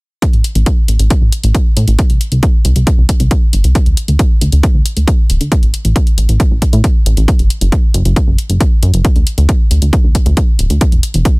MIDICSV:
0, 0, Header, 1, 3, 480
1, 0, Start_track
1, 0, Tempo, 441176
1, 243, Time_signature, 4, 2, 24, 8
1, 12397, End_track
2, 0, Start_track
2, 0, Title_t, "Analog synth bass"
2, 0, Program_c, 0, 38
2, 362, Note_on_c, 0, 33, 69
2, 462, Note_off_c, 0, 33, 0
2, 602, Note_on_c, 0, 33, 76
2, 702, Note_off_c, 0, 33, 0
2, 961, Note_on_c, 0, 33, 85
2, 1061, Note_off_c, 0, 33, 0
2, 1081, Note_on_c, 0, 33, 77
2, 1181, Note_off_c, 0, 33, 0
2, 1321, Note_on_c, 0, 33, 72
2, 1421, Note_off_c, 0, 33, 0
2, 1563, Note_on_c, 0, 33, 76
2, 1662, Note_off_c, 0, 33, 0
2, 1922, Note_on_c, 0, 45, 87
2, 2022, Note_off_c, 0, 45, 0
2, 2042, Note_on_c, 0, 33, 79
2, 2142, Note_off_c, 0, 33, 0
2, 2283, Note_on_c, 0, 36, 70
2, 2382, Note_off_c, 0, 36, 0
2, 2522, Note_on_c, 0, 36, 78
2, 2622, Note_off_c, 0, 36, 0
2, 2883, Note_on_c, 0, 36, 86
2, 2982, Note_off_c, 0, 36, 0
2, 3002, Note_on_c, 0, 36, 79
2, 3102, Note_off_c, 0, 36, 0
2, 3242, Note_on_c, 0, 36, 76
2, 3342, Note_off_c, 0, 36, 0
2, 3482, Note_on_c, 0, 36, 75
2, 3582, Note_off_c, 0, 36, 0
2, 3843, Note_on_c, 0, 31, 87
2, 3942, Note_off_c, 0, 31, 0
2, 3962, Note_on_c, 0, 36, 76
2, 4062, Note_off_c, 0, 36, 0
2, 4202, Note_on_c, 0, 38, 68
2, 4302, Note_off_c, 0, 38, 0
2, 4442, Note_on_c, 0, 38, 77
2, 4542, Note_off_c, 0, 38, 0
2, 4802, Note_on_c, 0, 38, 90
2, 4902, Note_off_c, 0, 38, 0
2, 4923, Note_on_c, 0, 38, 76
2, 5022, Note_off_c, 0, 38, 0
2, 5162, Note_on_c, 0, 38, 73
2, 5262, Note_off_c, 0, 38, 0
2, 5403, Note_on_c, 0, 38, 77
2, 5502, Note_off_c, 0, 38, 0
2, 5763, Note_on_c, 0, 26, 87
2, 5862, Note_off_c, 0, 26, 0
2, 5883, Note_on_c, 0, 38, 78
2, 5982, Note_off_c, 0, 38, 0
2, 6124, Note_on_c, 0, 33, 71
2, 6223, Note_off_c, 0, 33, 0
2, 6363, Note_on_c, 0, 33, 76
2, 6462, Note_off_c, 0, 33, 0
2, 6722, Note_on_c, 0, 33, 88
2, 6822, Note_off_c, 0, 33, 0
2, 6842, Note_on_c, 0, 33, 78
2, 6942, Note_off_c, 0, 33, 0
2, 7083, Note_on_c, 0, 33, 73
2, 7182, Note_off_c, 0, 33, 0
2, 7322, Note_on_c, 0, 45, 76
2, 7422, Note_off_c, 0, 45, 0
2, 7682, Note_on_c, 0, 33, 89
2, 7782, Note_off_c, 0, 33, 0
2, 7803, Note_on_c, 0, 33, 78
2, 7902, Note_off_c, 0, 33, 0
2, 8042, Note_on_c, 0, 30, 69
2, 8142, Note_off_c, 0, 30, 0
2, 8282, Note_on_c, 0, 30, 75
2, 8382, Note_off_c, 0, 30, 0
2, 8642, Note_on_c, 0, 30, 93
2, 8742, Note_off_c, 0, 30, 0
2, 8762, Note_on_c, 0, 30, 80
2, 8862, Note_off_c, 0, 30, 0
2, 9002, Note_on_c, 0, 30, 74
2, 9102, Note_off_c, 0, 30, 0
2, 9243, Note_on_c, 0, 30, 80
2, 9342, Note_off_c, 0, 30, 0
2, 9603, Note_on_c, 0, 42, 90
2, 9702, Note_off_c, 0, 42, 0
2, 9723, Note_on_c, 0, 30, 81
2, 9822, Note_off_c, 0, 30, 0
2, 9962, Note_on_c, 0, 38, 70
2, 10062, Note_off_c, 0, 38, 0
2, 10203, Note_on_c, 0, 38, 78
2, 10302, Note_off_c, 0, 38, 0
2, 10563, Note_on_c, 0, 38, 87
2, 10662, Note_off_c, 0, 38, 0
2, 10682, Note_on_c, 0, 38, 77
2, 10782, Note_off_c, 0, 38, 0
2, 10923, Note_on_c, 0, 38, 73
2, 11022, Note_off_c, 0, 38, 0
2, 11163, Note_on_c, 0, 38, 78
2, 11262, Note_off_c, 0, 38, 0
2, 11522, Note_on_c, 0, 26, 89
2, 11622, Note_off_c, 0, 26, 0
2, 11642, Note_on_c, 0, 38, 79
2, 11742, Note_off_c, 0, 38, 0
2, 11883, Note_on_c, 0, 28, 74
2, 11982, Note_off_c, 0, 28, 0
2, 12123, Note_on_c, 0, 28, 77
2, 12222, Note_off_c, 0, 28, 0
2, 12397, End_track
3, 0, Start_track
3, 0, Title_t, "Drums"
3, 242, Note_on_c, 9, 36, 109
3, 243, Note_on_c, 9, 42, 74
3, 351, Note_off_c, 9, 36, 0
3, 352, Note_off_c, 9, 42, 0
3, 363, Note_on_c, 9, 42, 34
3, 472, Note_off_c, 9, 42, 0
3, 482, Note_on_c, 9, 42, 71
3, 591, Note_off_c, 9, 42, 0
3, 602, Note_on_c, 9, 42, 47
3, 711, Note_off_c, 9, 42, 0
3, 721, Note_on_c, 9, 42, 74
3, 722, Note_on_c, 9, 36, 102
3, 830, Note_off_c, 9, 42, 0
3, 831, Note_off_c, 9, 36, 0
3, 961, Note_on_c, 9, 42, 74
3, 1070, Note_off_c, 9, 42, 0
3, 1082, Note_on_c, 9, 42, 49
3, 1191, Note_off_c, 9, 42, 0
3, 1201, Note_on_c, 9, 42, 68
3, 1202, Note_on_c, 9, 36, 105
3, 1310, Note_off_c, 9, 42, 0
3, 1311, Note_off_c, 9, 36, 0
3, 1441, Note_on_c, 9, 42, 76
3, 1550, Note_off_c, 9, 42, 0
3, 1561, Note_on_c, 9, 42, 49
3, 1670, Note_off_c, 9, 42, 0
3, 1682, Note_on_c, 9, 36, 103
3, 1682, Note_on_c, 9, 42, 74
3, 1790, Note_off_c, 9, 36, 0
3, 1791, Note_off_c, 9, 42, 0
3, 1922, Note_on_c, 9, 42, 74
3, 2031, Note_off_c, 9, 42, 0
3, 2041, Note_on_c, 9, 42, 50
3, 2150, Note_off_c, 9, 42, 0
3, 2161, Note_on_c, 9, 36, 111
3, 2161, Note_on_c, 9, 42, 73
3, 2270, Note_off_c, 9, 36, 0
3, 2270, Note_off_c, 9, 42, 0
3, 2282, Note_on_c, 9, 42, 33
3, 2391, Note_off_c, 9, 42, 0
3, 2402, Note_on_c, 9, 42, 71
3, 2511, Note_off_c, 9, 42, 0
3, 2521, Note_on_c, 9, 42, 44
3, 2630, Note_off_c, 9, 42, 0
3, 2641, Note_on_c, 9, 36, 107
3, 2641, Note_on_c, 9, 42, 71
3, 2750, Note_off_c, 9, 36, 0
3, 2750, Note_off_c, 9, 42, 0
3, 2881, Note_on_c, 9, 42, 70
3, 2990, Note_off_c, 9, 42, 0
3, 3000, Note_on_c, 9, 42, 48
3, 3109, Note_off_c, 9, 42, 0
3, 3121, Note_on_c, 9, 36, 108
3, 3121, Note_on_c, 9, 42, 69
3, 3230, Note_off_c, 9, 36, 0
3, 3230, Note_off_c, 9, 42, 0
3, 3361, Note_on_c, 9, 36, 58
3, 3361, Note_on_c, 9, 42, 72
3, 3470, Note_off_c, 9, 36, 0
3, 3470, Note_off_c, 9, 42, 0
3, 3481, Note_on_c, 9, 42, 49
3, 3590, Note_off_c, 9, 42, 0
3, 3601, Note_on_c, 9, 36, 112
3, 3601, Note_on_c, 9, 42, 70
3, 3710, Note_off_c, 9, 36, 0
3, 3710, Note_off_c, 9, 42, 0
3, 3842, Note_on_c, 9, 42, 72
3, 3950, Note_off_c, 9, 42, 0
3, 3962, Note_on_c, 9, 42, 49
3, 4071, Note_off_c, 9, 42, 0
3, 4082, Note_on_c, 9, 36, 111
3, 4082, Note_on_c, 9, 42, 66
3, 4190, Note_off_c, 9, 36, 0
3, 4191, Note_off_c, 9, 42, 0
3, 4202, Note_on_c, 9, 42, 32
3, 4311, Note_off_c, 9, 42, 0
3, 4322, Note_on_c, 9, 42, 70
3, 4430, Note_off_c, 9, 42, 0
3, 4442, Note_on_c, 9, 42, 45
3, 4551, Note_off_c, 9, 42, 0
3, 4562, Note_on_c, 9, 36, 113
3, 4562, Note_on_c, 9, 42, 67
3, 4670, Note_off_c, 9, 36, 0
3, 4671, Note_off_c, 9, 42, 0
3, 4803, Note_on_c, 9, 42, 69
3, 4911, Note_off_c, 9, 42, 0
3, 4922, Note_on_c, 9, 42, 46
3, 5031, Note_off_c, 9, 42, 0
3, 5042, Note_on_c, 9, 36, 110
3, 5042, Note_on_c, 9, 42, 70
3, 5151, Note_off_c, 9, 36, 0
3, 5151, Note_off_c, 9, 42, 0
3, 5283, Note_on_c, 9, 42, 71
3, 5391, Note_off_c, 9, 42, 0
3, 5403, Note_on_c, 9, 42, 47
3, 5512, Note_off_c, 9, 42, 0
3, 5522, Note_on_c, 9, 36, 108
3, 5523, Note_on_c, 9, 42, 70
3, 5631, Note_off_c, 9, 36, 0
3, 5632, Note_off_c, 9, 42, 0
3, 5763, Note_on_c, 9, 42, 70
3, 5872, Note_off_c, 9, 42, 0
3, 5883, Note_on_c, 9, 42, 48
3, 5992, Note_off_c, 9, 42, 0
3, 6002, Note_on_c, 9, 36, 108
3, 6003, Note_on_c, 9, 42, 69
3, 6111, Note_off_c, 9, 36, 0
3, 6112, Note_off_c, 9, 42, 0
3, 6123, Note_on_c, 9, 42, 32
3, 6232, Note_off_c, 9, 42, 0
3, 6243, Note_on_c, 9, 42, 70
3, 6351, Note_off_c, 9, 42, 0
3, 6363, Note_on_c, 9, 42, 45
3, 6471, Note_off_c, 9, 42, 0
3, 6482, Note_on_c, 9, 36, 106
3, 6482, Note_on_c, 9, 42, 69
3, 6590, Note_off_c, 9, 36, 0
3, 6591, Note_off_c, 9, 42, 0
3, 6603, Note_on_c, 9, 42, 33
3, 6712, Note_off_c, 9, 42, 0
3, 6722, Note_on_c, 9, 42, 68
3, 6831, Note_off_c, 9, 42, 0
3, 6843, Note_on_c, 9, 42, 44
3, 6951, Note_off_c, 9, 42, 0
3, 6962, Note_on_c, 9, 36, 111
3, 6962, Note_on_c, 9, 42, 68
3, 7071, Note_off_c, 9, 36, 0
3, 7071, Note_off_c, 9, 42, 0
3, 7201, Note_on_c, 9, 42, 67
3, 7202, Note_on_c, 9, 36, 58
3, 7310, Note_off_c, 9, 42, 0
3, 7311, Note_off_c, 9, 36, 0
3, 7322, Note_on_c, 9, 42, 44
3, 7431, Note_off_c, 9, 42, 0
3, 7442, Note_on_c, 9, 36, 110
3, 7442, Note_on_c, 9, 42, 68
3, 7551, Note_off_c, 9, 36, 0
3, 7551, Note_off_c, 9, 42, 0
3, 7683, Note_on_c, 9, 42, 69
3, 7792, Note_off_c, 9, 42, 0
3, 7803, Note_on_c, 9, 42, 48
3, 7912, Note_off_c, 9, 42, 0
3, 7922, Note_on_c, 9, 36, 109
3, 7923, Note_on_c, 9, 42, 67
3, 8031, Note_off_c, 9, 36, 0
3, 8032, Note_off_c, 9, 42, 0
3, 8043, Note_on_c, 9, 42, 32
3, 8152, Note_off_c, 9, 42, 0
3, 8164, Note_on_c, 9, 42, 65
3, 8272, Note_off_c, 9, 42, 0
3, 8283, Note_on_c, 9, 42, 46
3, 8392, Note_off_c, 9, 42, 0
3, 8402, Note_on_c, 9, 36, 107
3, 8403, Note_on_c, 9, 42, 71
3, 8511, Note_off_c, 9, 36, 0
3, 8511, Note_off_c, 9, 42, 0
3, 8642, Note_on_c, 9, 42, 70
3, 8751, Note_off_c, 9, 42, 0
3, 8763, Note_on_c, 9, 42, 46
3, 8871, Note_off_c, 9, 42, 0
3, 8882, Note_on_c, 9, 36, 110
3, 8883, Note_on_c, 9, 42, 67
3, 8991, Note_off_c, 9, 36, 0
3, 8992, Note_off_c, 9, 42, 0
3, 9122, Note_on_c, 9, 42, 70
3, 9231, Note_off_c, 9, 42, 0
3, 9243, Note_on_c, 9, 42, 44
3, 9352, Note_off_c, 9, 42, 0
3, 9362, Note_on_c, 9, 36, 106
3, 9363, Note_on_c, 9, 42, 64
3, 9471, Note_off_c, 9, 36, 0
3, 9472, Note_off_c, 9, 42, 0
3, 9603, Note_on_c, 9, 42, 71
3, 9711, Note_off_c, 9, 42, 0
3, 9723, Note_on_c, 9, 42, 48
3, 9832, Note_off_c, 9, 42, 0
3, 9842, Note_on_c, 9, 42, 73
3, 9843, Note_on_c, 9, 36, 108
3, 9951, Note_off_c, 9, 36, 0
3, 9951, Note_off_c, 9, 42, 0
3, 9963, Note_on_c, 9, 42, 34
3, 10072, Note_off_c, 9, 42, 0
3, 10083, Note_on_c, 9, 42, 70
3, 10192, Note_off_c, 9, 42, 0
3, 10203, Note_on_c, 9, 42, 47
3, 10312, Note_off_c, 9, 42, 0
3, 10323, Note_on_c, 9, 36, 102
3, 10323, Note_on_c, 9, 42, 71
3, 10431, Note_off_c, 9, 36, 0
3, 10432, Note_off_c, 9, 42, 0
3, 10563, Note_on_c, 9, 42, 70
3, 10672, Note_off_c, 9, 42, 0
3, 10684, Note_on_c, 9, 42, 49
3, 10792, Note_off_c, 9, 42, 0
3, 10803, Note_on_c, 9, 36, 108
3, 10803, Note_on_c, 9, 42, 72
3, 10912, Note_off_c, 9, 36, 0
3, 10912, Note_off_c, 9, 42, 0
3, 11042, Note_on_c, 9, 42, 74
3, 11043, Note_on_c, 9, 36, 54
3, 11151, Note_off_c, 9, 42, 0
3, 11152, Note_off_c, 9, 36, 0
3, 11163, Note_on_c, 9, 42, 46
3, 11271, Note_off_c, 9, 42, 0
3, 11282, Note_on_c, 9, 42, 71
3, 11283, Note_on_c, 9, 36, 101
3, 11391, Note_off_c, 9, 36, 0
3, 11391, Note_off_c, 9, 42, 0
3, 11522, Note_on_c, 9, 42, 72
3, 11631, Note_off_c, 9, 42, 0
3, 11642, Note_on_c, 9, 42, 49
3, 11751, Note_off_c, 9, 42, 0
3, 11762, Note_on_c, 9, 36, 112
3, 11762, Note_on_c, 9, 42, 73
3, 11871, Note_off_c, 9, 36, 0
3, 11871, Note_off_c, 9, 42, 0
3, 11883, Note_on_c, 9, 42, 35
3, 11992, Note_off_c, 9, 42, 0
3, 12002, Note_on_c, 9, 42, 77
3, 12111, Note_off_c, 9, 42, 0
3, 12122, Note_on_c, 9, 42, 50
3, 12231, Note_off_c, 9, 42, 0
3, 12242, Note_on_c, 9, 36, 103
3, 12242, Note_on_c, 9, 42, 77
3, 12351, Note_off_c, 9, 36, 0
3, 12351, Note_off_c, 9, 42, 0
3, 12397, End_track
0, 0, End_of_file